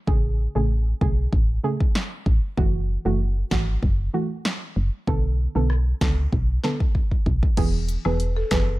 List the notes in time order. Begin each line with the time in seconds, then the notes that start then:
0.07 A1 C#3 A3 G#4, kick
0.55 A1 C#3 A3 G#4
1.01 B1 C#3 A3 G#4, kick
1.33 A1, kick
1.63 C#3 A3 G#4
1.80 kick
1.95 snare
2.26 A1, kick
2.57 F#1 E3 A3 F#4, kick
3.05 F#1 E3 A3 F#4
3.51 G#1 E3 A3 F#4, kick, snare
3.83 F#1, kick
4.13 E3 A3 F#4
4.45 snare
4.76 F#1
5.07 B1 D3 B3 A4, kick
5.55 B1 D3 B3 A4
5.70 cross-stick
6.01 C#2 D3 B3 A4, kick, snare
6.32 B1, kick
6.63 D3 B3 A4, snare
6.80 kick
6.95 kick
7.11 kick
7.26 B1, kick
7.43 kick
7.57 E1 E3 B3 G#4, kick, closed hi-hat, crash
7.88 closed hi-hat, cabasa
8.05 E1 E3 B3 G#4 B4, high woodblock
8.20 closed hi-hat
8.37 A4
8.51 F#1 E3 B3 G#4 B4, kick, snare, closed hi-hat, cabasa, high woodblock